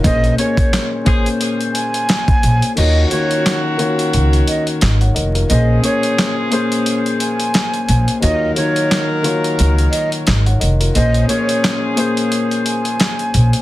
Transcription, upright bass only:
X:1
M:4/4
L:1/16
Q:"Swing 16ths" 1/4=88
K:Ebm
V:1 name="Upright bass" clef=bass
B,,,2 z12 B,,, z | E,,2 z6 D,,2 z2 A,,,2 F,,,2 | B,,,2 z12 B,,, z | E,,2 z6 D,,2 z2 A,,,2 F,,,2 |
B,,,2 z12 B,,, z |]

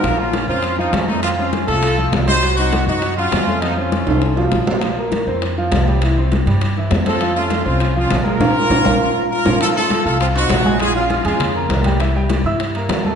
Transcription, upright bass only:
X:1
M:4/4
L:1/8
Q:1/4=201
K:Bbm
V:1 name="Upright bass" clef=bass
B,,,3 F,,3 F,,2- | F,,3 C,,3 C,,2- | C,,3 G,,3 F,,2- | F,,3 C,,3 B,,,2- |
B,,,3 F,,3 C,,2- | C,,3 =G,,3 F,,2- | F,,3 C,,3 B,,,2 | B,,, z B,,, B,,, z3 B,,, |
[K:Fphr] z3 C,,3 B,,,2- | B,,,3 F,,3 C,,2- | C,,3 =G,,3 F,,2 |]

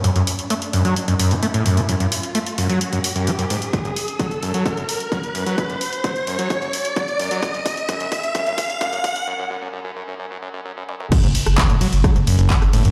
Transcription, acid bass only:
X:1
M:4/4
L:1/16
Q:1/4=130
K:F#m
V:1 name="Acid bass" clef=bass
F,, F,, z2 A, z F,, F, z F,, F,, C, A, A,, F,, C, | F,, F,, z2 A, z F,, F, z F,, z F,, A, F,, G,, z | F,, F,, z2 F, z F,, F, F,, F,, z2 F, z F,, F, | F,, F,, z2 F, z F,, F, F,, F,, z2 F, z F,, F, |
F,, F,, z2 F,, F,, z2 F,, F,, z2 F,, F,, z2 | F,, F,, F,, F,, F,, F,, F,, F,, F,, F,, F,, F,, F,, F,, F,, F,, | F,, G,, z2 E,, A,, F, z F, G,, F,, F,, z2 A,, F,, |]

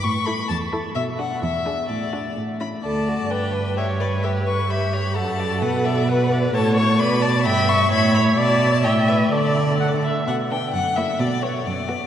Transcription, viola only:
X:1
M:2/4
L:1/8
Q:1/4=130
K:D
V:1 name="Viola"
z E z E | z D z D | z D z C | d2 B2 |
c2 B2 | G2 A2- | A2 B2 | c2 d2 |
e2 c2 | d2 e2 | d2 f e | [K:Bm] z B, z ^A, |
z B, z B, |]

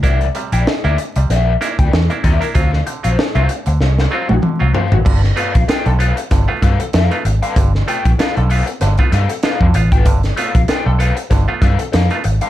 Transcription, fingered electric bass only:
X:1
M:4/4
L:1/16
Q:"Swing 16ths" 1/4=96
K:Gmix
V:1 name="Fingered electric bass" clef=bass
C,,2 z _B,,, z D,, z C,, B,,,2 z D,, E,, z _E,, z | D,,2 z _B,,, z C,, z D,, C,,2 z B,,, z C,, z _A,,, | G,,,2 z _B,,, z =B,,,2 z G,,, z G,, z F,, z _A,,, z | G,,,2 z _B,,, z =B,,,2 z G,,, z G,, z2 F,, A,,, _A,,, |
G,,,2 z _B,,, z =B,,,2 z G,,, z G,, z F,, z _A,,, z |]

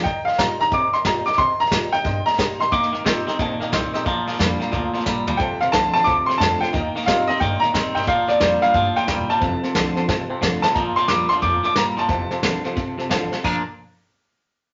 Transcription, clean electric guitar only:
X:1
M:4/4
L:1/8
Q:"Swing" 1/4=179
K:Bb
V:1 name="Clean electric guitar" clef=bass
z8 | z8 | [E,B,] [E,B,] [E,C] [E,C] [E,B,] [E,B,] [E,C] [E,C] | [B,,F,] [B,,F,] [B,,G,] [B,,G,] [B,,F,] [B,,F,] [B,,G,] [B,,G,] |
[F,,C,] [F,,C,] [F,,D,] [F,,D,] [F,,C,] [F,,C,] [F,,D,] [F,,D,] | [E,B,] [E,B,] [E,C] [E,C] [E,B,] [E,B,] [E,C] [E,C] | [B,,F,] [B,,F,] [B,,G,] [B,,G,] [B,,F,] [B,,F,] [B,,G,] [B,,G,] | [F,,C,] [F,,C,] [F,,D,] [F,,D,] [F,,C,] [F,,C,] [F,,D,] [F,,D,] |
[B,,F,] [B,,F,] [B,,G,] [B,,F,] [B,,F,] [B,,F,] [B,,G,] [B,,F,] | [F,,C,] [F,,C,] [F,,D,] [F,,C,] [F,,C,] [F,,C,] [F,,D,] [F,,C,] | [B,,F,B,D] z6 z |]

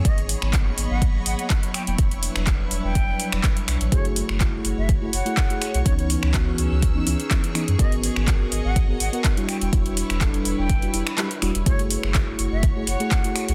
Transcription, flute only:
X:1
M:4/4
L:1/16
Q:"Swing 16ths" 1/4=124
K:E
V:1 name="Flute"
d z6 f z2 f f z2 =g g | z6 z =g4 z4 z | c z6 e z2 f6 | c c z12 z2 |
d z6 f z2 f f z2 =g g | z6 z =g4 z4 z | c z6 e z2 f6 |]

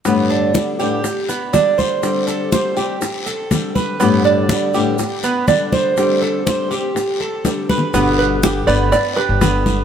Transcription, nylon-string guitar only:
X:1
M:4/4
L:1/8
Q:1/4=122
K:G
V:1 name="Nylon-string guitar" clef=bass
[G,,A,,D,G,B,G]2 [D,G,B,G] [A,,D,G,B,G] z2 [D,G,B,G]2 | [D,G,CG]2 [D,G,CG] [G,CG] z2 [D,G,CG]2 | [G,,A,,D,G,B,G]2 [D,G,B,G] [A,,D,G,B,G] z2 [D,G,B,G]2 | [D,G,CG]2 [D,G,CG] [G,CG] z2 [D,G,CG]2 |
[B,,D,G,B,G]2 [D,G,B,G] [D,G,B,G] z2 [D,G,B,G]2 |]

